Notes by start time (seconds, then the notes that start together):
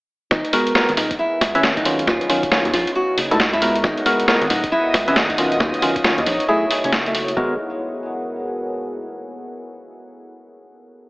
0.31 G#1 B3 D#4, kick, snare
0.45 closed hi-hat
0.53 G#3 B3 F#4 A#4, open hi-hat
0.67 closed hi-hat
0.75 G#3 B3 F#4 A#4, snare
0.89 G#1, closed hi-hat
0.97 D#1 D#4, snare, open hi-hat
1.11 kick, closed hi-hat
1.19 C#4 E4
1.41 C#2, kick, snare, open hi-hat
1.55 G#1 C#4 E4 B4 E5, closed hi-hat
1.63 snare
1.77 D#4, kick, closed hi-hat
1.85 D#3 F#3 C#4 F4, open hi-hat
1.99 closed hi-hat
2.07 D#2 F4, kick, snare
2.21 closed hi-hat
2.29 D#3 F#3 C#4 F4, open hi-hat
2.43 kick, closed hi-hat
2.51 D#3 F#3 C#4 F4, snare
2.65 D#2, closed hi-hat
2.73 A#1 F4, open hi-hat
2.87 closed hi-hat
2.95 F#4
3.18 F#1, open hi-hat
3.31 C#2 F#3 A3 D#4 E4 A4, closed hi-hat
3.36 F#5, snare
3.53 E4, closed hi-hat
3.62 G#3 B3 F#4 A#4, open hi-hat
3.75 closed hi-hat
3.84 G#1 B3 D#4 D#5, kick, snare
3.98 closed hi-hat
4.06 G#3 B3 F#4 A#4, open hi-hat
4.20 closed hi-hat
4.28 G#3 B3 F#4 A#4, snare
4.41 G#1, closed hi-hat
4.50 D#1 D#4, snare, open hi-hat
4.64 kick, closed hi-hat
4.72 E4
4.94 C#2, kick, snare, open hi-hat
5.08 G#1 C#4 E4 B4 E5, closed hi-hat
5.13 C#5, snare
5.30 D#4, kick, closed hi-hat
5.38 D#3 F#3 C#4 F4, open hi-hat
5.52 closed hi-hat
5.60 D#2 D#4, kick, snare
5.74 closed hi-hat
5.82 D#3 F#3 C#4 F4, open hi-hat
5.96 kick, closed hi-hat
6.04 D#3 F#3 C#4 F4, snare
6.18 D#2, closed hi-hat
6.26 A#1 D#4, open hi-hat
6.40 closed hi-hat
6.48 F#3 A3 E4 G#4
6.71 open hi-hat
6.84 F#1 C#4, closed hi-hat
6.93 snare
7.06 A3, closed hi-hat
7.15 open hi-hat
7.28 closed hi-hat
7.37 G#1 G#3 B3 F#4 A#4, kick
7.45 G#4
7.52 A#4
7.57 F#5